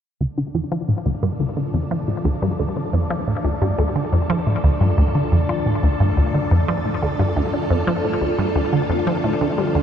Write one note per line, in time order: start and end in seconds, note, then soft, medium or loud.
0.21 0.25 D2 medium
0.21 9.83 D3 medium
0.21 9.83 D4 medium
0.21 9.83 D5 medium
0.38 0.46 D3 medium
0.55 0.67 F2 medium
0.72 0.84 F3 medium
0.89 1.01 A2 medium
0.89 9.83 F3 medium
1.06 1.11 D2 medium
1.23 1.35 G2 medium
1.23 9.83 A4 medium
1.40 1.45 D2 medium
1.50 9.83 F4 medium
1.57 1.65 D3 medium
1.62 9.83 A3 medium
1.74 1.86 F2 medium
1.91 2.03 F3 medium
2.08 2.20 A2 medium
2.25 2.30 D2 medium
2.42 2.54 G2 medium
2.59 2.64 D2 medium
2.76 2.84 D3 medium
2.93 3.05 F2 medium
3.10 3.22 F3 medium
3.27 3.39 A2 medium
3.44 3.49 D2 medium
3.62 3.73 G2 medium
3.79 3.83 D2 medium
3.96 4.04 D3 medium
4.13 4.25 F2 medium
4.30 4.42 F3 medium
4.47 4.59 A2 medium
4.64 4.69 D2 loud
4.81 4.93 G2 medium
4.98 5.03 D2 medium
5.15 5.23 D3 medium
5.32 5.44 F2 medium
5.49 5.61 F3 medium
5.66 5.78 A2 medium
5.83 5.88 D2 medium
6.00 6.12 G2 medium
6.17 6.22 D2 medium
6.34 6.42 D3 medium
6.51 6.63 F2 medium
6.68 6.80 F3 medium
6.85 6.97 A2 medium
7.02 7.07 D2 loud
7.19 7.31 G2 medium
7.36 7.41 D2 medium
7.54 7.61 D3 medium
7.70 7.82 F2 medium
7.87 7.99 F3 medium
8.04 8.16 A2 medium
8.21 8.26 D2 medium
8.39 8.51 G2 medium
8.56 8.60 D2 medium
8.73 8.81 D3 medium
8.90 9.02 F2 medium
9.07 9.19 F3 medium
9.24 9.36 A2 medium
9.41 9.46 D2 medium
9.58 9.70 G2 medium
9.75 9.80 D2 medium